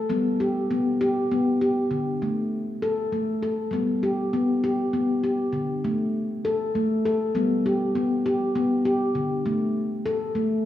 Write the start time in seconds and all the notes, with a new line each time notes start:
0.10 G3 B3
0.40 G4
0.71 B3
1.01 G4
1.32 B3
1.61 G4
1.91 D3
2.22 A3
2.82 A4
3.12 A3
3.43 A4
3.71 G3 B3
4.03 G4
4.33 B3
4.64 G4
4.93 B3
5.24 G4
5.53 D3
5.84 A3
6.45 A4
6.75 A3
7.05 A4
7.35 G3 B3
7.66 G4
7.95 B3
8.26 G4
8.55 B3
8.85 G4
9.15 D3
9.46 A3
10.06 A4
10.35 A3